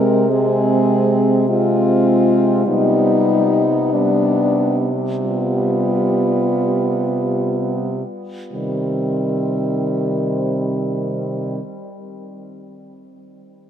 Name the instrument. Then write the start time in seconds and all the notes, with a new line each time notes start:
french horn
Already playing: C3 G#3 C4 A#4
0.29 G#3 C4 G#4
1.48 G#3 C4 F4
2.66 C3 G3 B3 D#4
3.93 G3 B3 D4
5.23 G3 B3 F4
8.53 C3 D#3 G3 C4